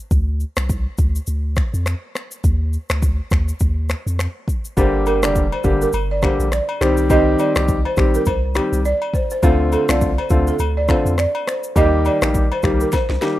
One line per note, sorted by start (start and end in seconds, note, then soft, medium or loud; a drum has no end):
0.11 0.45 D2 loud
0.11 kick loud
0.11 shaker medium
0.40 shaker soft
0.56 0.87 C2 medium
0.56 finger snap medium
0.56 cross-stick loud
0.56 shaker medium
0.69 kick loud
0.69 shaker medium
0.98 1.20 D2 loud
0.98 kick loud
0.98 shaker medium
1.15 shaker medium
1.27 1.61 D2 medium
1.27 shaker medium
1.56 finger snap medium
1.56 kick medium
1.56 cross-stick medium
1.56 shaker soft
1.74 1.95 F2 medium
1.74 shaker medium
1.86 finger snap medium
1.86 cross-stick medium
1.86 shaker medium
2.15 finger snap medium
2.15 cross-stick medium
2.15 shaker medium
2.31 shaker medium
2.44 2.78 D#2 loud
2.44 kick loud
2.44 shaker medium
2.73 shaker soft
2.90 3.20 D2 medium
2.90 finger snap medium
2.90 cross-stick loud
2.90 shaker medium
3.02 kick medium
3.02 shaker medium
3.31 3.53 D#2 medium
3.31 finger snap medium
3.31 kick loud
3.31 cross-stick medium
3.31 shaker medium
3.48 shaker medium
3.60 3.94 D#2 medium
3.60 kick medium
3.60 shaker medium
3.89 finger snap medium
3.89 cross-stick medium
3.89 shaker soft
4.07 4.28 F2 medium
4.07 shaker medium
4.19 finger snap medium
4.19 cross-stick medium
4.19 shaker medium
4.48 kick medium
4.48 shaker medium
4.65 shaker medium
4.77 5.25 G1 loud
4.77 5.19 D3 medium
4.77 5.19 G3 medium
4.77 5.19 A#3 medium
4.77 5.19 G4 medium
4.77 4.88 C5 medium
4.77 kick loud
4.77 high agogo medium
4.77 shaker medium
5.06 5.17 A#4 medium
5.06 high agogo medium
5.06 shaker soft
5.23 5.53 F1 medium
5.23 5.44 D3 medium
5.23 5.44 G3 medium
5.23 5.44 A#3 medium
5.23 5.44 G4 medium
5.23 5.31 D5 medium
5.23 finger snap medium
5.23 cross-stick loud
5.23 shaker medium
5.36 kick medium
5.36 shaker medium
5.52 5.60 C5 medium
5.52 high agogo medium
5.64 5.86 G1 loud
5.64 5.87 D3 medium
5.64 5.87 G3 medium
5.64 5.87 A#3 medium
5.64 5.87 G4 medium
5.64 kick loud
5.64 shaker medium
5.82 5.90 A#4 medium
5.82 shaker medium
5.93 6.27 G1 loud
5.93 high agogo medium
5.93 shaker medium
6.11 6.19 D5 medium
6.22 6.45 D3 medium
6.22 6.45 G3 medium
6.22 6.46 A#3 medium
6.22 6.46 G4 medium
6.22 6.34 C5 medium
6.22 finger snap medium
6.22 kick medium
6.22 cross-stick medium
6.22 high agogo medium
6.22 shaker soft
6.40 6.61 A#1 loud
6.40 shaker medium
6.52 6.63 D5 medium
6.52 finger snap medium
6.52 cross-stick medium
6.52 shaker medium
6.69 high agogo medium
6.81 7.36 C2 loud
6.81 7.08 D#3 medium
6.81 7.08 G3 medium
6.81 7.08 C4 medium
6.81 7.08 G4 medium
6.81 6.92 C5 medium
6.81 finger snap medium
6.81 cross-stick medium
6.81 shaker medium
6.97 shaker medium
7.10 7.52 D#3 medium
7.10 7.52 G3 medium
7.10 7.52 C4 medium
7.10 7.52 G4 loud
7.10 7.21 D#5 loud
7.10 kick loud
7.10 high agogo medium
7.10 shaker medium
7.39 7.50 D5 medium
7.39 high agogo medium
7.39 shaker soft
7.56 7.86 C2 medium
7.56 7.77 D#3 medium
7.56 7.77 G3 medium
7.56 7.77 C4 medium
7.56 7.77 G4 medium
7.56 finger snap loud
7.56 cross-stick loud
7.56 shaker medium
7.68 kick loud
7.68 shaker medium
7.85 7.93 C5 medium
7.85 high agogo medium
7.97 8.19 A#1 medium
7.97 8.20 D#3 medium
7.97 8.20 G3 medium
7.97 8.20 C4 medium
7.97 8.21 G4 medium
7.97 finger snap medium
7.97 kick loud
7.97 cross-stick medium
7.97 shaker medium
8.14 8.23 A#4 medium
8.14 shaker medium
8.26 8.60 C2 medium
8.26 8.45 C5 medium
8.26 kick medium
8.26 high agogo medium
8.26 shaker medium
8.55 8.78 D#3 medium
8.55 8.78 G3 medium
8.55 8.79 C4 medium
8.55 8.79 G4 medium
8.55 finger snap medium
8.55 cross-stick medium
8.55 high agogo medium
8.55 shaker soft
8.73 8.94 C2 loud
8.73 shaker medium
8.85 8.96 D5 medium
8.85 shaker medium
9.02 high agogo medium
9.14 9.25 C5 medium
9.14 kick medium
9.14 shaker medium
9.30 9.39 C5 medium
9.30 shaker medium
9.43 9.76 D2 loud
9.43 9.85 D3 medium
9.43 9.85 A3 medium
9.43 9.85 C4 medium
9.43 9.85 F4 loud
9.43 9.54 C5 medium
9.43 kick loud
9.43 high agogo medium
9.43 shaker medium
9.72 9.83 A4 medium
9.72 high agogo medium
9.72 shaker soft
9.89 10.19 C2 medium
9.89 10.10 D3 medium
9.89 10.10 A3 medium
9.89 10.10 C4 medium
9.89 10.10 F4 medium
9.89 9.97 D5 medium
9.89 finger snap loud
9.89 cross-stick loud
9.89 shaker medium
10.01 kick loud
10.01 shaker medium
10.18 10.26 C5 medium
10.18 high agogo medium
10.30 10.52 D2 loud
10.30 10.53 D3 medium
10.30 10.53 A3 medium
10.30 10.54 C4 medium
10.30 10.54 F4 medium
10.30 kick loud
10.30 shaker medium
10.47 10.55 A4 medium
10.47 shaker medium
10.59 10.93 D2 medium
10.59 high agogo medium
10.59 shaker medium
10.77 10.89 D5 medium
10.88 11.12 D3 medium
10.88 11.12 A3 medium
10.88 11.12 C4 medium
10.88 11.12 F4 medium
10.88 11.00 C5 medium
10.88 finger snap medium
10.88 kick medium
10.88 cross-stick medium
10.88 high agogo medium
10.88 shaker soft
11.05 11.27 F2 medium
11.05 shaker medium
11.18 11.29 D5 medium
11.18 finger snap medium
11.18 cross-stick medium
11.18 shaker medium
11.35 high agogo medium
11.47 11.58 C5 medium
11.47 finger snap medium
11.47 cross-stick medium
11.47 shaker medium
11.64 shaker medium
11.76 12.10 D#2 loud
11.76 12.18 D#3 medium
11.76 12.18 G3 medium
11.76 12.18 A#3 medium
11.76 12.18 G4 loud
11.76 11.87 D#5 loud
11.76 kick loud
11.76 high agogo medium
11.76 shaker medium
12.05 12.17 D5 medium
12.05 high agogo medium
12.05 shaker soft
12.22 12.52 A#1 medium
12.22 12.43 D#3 medium
12.22 12.43 G3 medium
12.22 12.43 A#3 medium
12.22 12.43 G4 medium
12.22 finger snap medium
12.22 cross-stick loud
12.22 shaker medium
12.34 kick medium
12.34 shaker medium
12.52 12.60 C5 medium
12.52 high agogo medium
12.63 12.85 C2 medium
12.63 12.86 D#3 medium
12.63 12.86 G3 medium
12.63 12.86 A#3 medium
12.63 12.86 G4 medium
12.63 finger snap medium
12.63 kick medium
12.63 cross-stick medium
12.63 shaker medium
12.80 12.89 A#4 medium
12.80 shaker medium
12.92 13.11 C5 medium
12.92 kick medium
12.92 snare medium
12.92 high agogo medium
12.92 shaker medium
13.09 13.18 C2 medium
13.09 snare medium
13.21 13.39 D#3 medium
13.21 13.39 G3 medium
13.21 13.39 A#3 medium
13.21 13.39 G4 medium
13.21 snare medium
13.21 high agogo medium
13.21 shaker soft